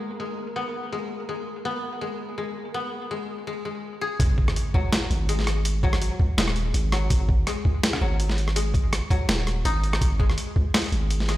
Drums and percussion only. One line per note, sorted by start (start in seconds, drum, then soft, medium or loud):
4.20 kick loud
4.20 closed hi-hat medium
4.38 kick loud
4.48 cross-stick medium
4.56 closed hi-hat medium
4.74 kick medium
4.93 cross-stick medium
4.93 snare loud
4.93 closed hi-hat medium
5.11 closed hi-hat soft
5.29 closed hi-hat medium
5.39 snare soft
5.47 cross-stick medium
5.47 closed hi-hat soft
5.65 closed hi-hat medium
5.83 kick loud
5.93 cross-stick medium
6.02 closed hi-hat medium
6.20 kick medium
6.38 snare loud
6.38 closed hi-hat medium
6.48 cross-stick medium
6.56 closed hi-hat soft
6.74 closed hi-hat medium
6.92 cross-stick medium
6.92 closed hi-hat soft
7.10 kick loud
7.10 closed hi-hat medium
7.29 kick loud
7.47 cross-stick soft
7.47 closed hi-hat medium
7.65 kick medium
7.83 snare loud
7.83 closed hi-hat medium
7.93 cross-stick medium
8.20 closed hi-hat medium
8.30 snare soft
8.38 closed hi-hat soft
8.48 cross-stick medium
8.56 closed hi-hat medium
8.74 kick loud
8.74 closed hi-hat soft
8.93 cross-stick medium
8.93 closed hi-hat medium
9.10 kick medium
9.10 closed hi-hat soft
9.29 snare loud
9.29 closed hi-hat medium
9.47 cross-stick medium
9.47 closed hi-hat soft
9.65 closed hi-hat medium
9.84 closed hi-hat soft
9.93 cross-stick medium
10.01 kick loud
10.01 closed hi-hat medium
10.20 kick loud
10.30 cross-stick soft
10.38 closed hi-hat medium
10.56 kick medium
10.74 cross-stick medium
10.74 snare loud
10.74 closed hi-hat medium
10.77 closed hi-hat medium
10.79 closed hi-hat soft
10.82 closed hi-hat soft
10.84 closed hi-hat soft
10.86 closed hi-hat soft
10.88 closed hi-hat soft
10.90 closed hi-hat soft
10.92 closed hi-hat soft
11.10 closed hi-hat medium
11.20 snare soft
11.29 cross-stick medium
11.29 closed hi-hat soft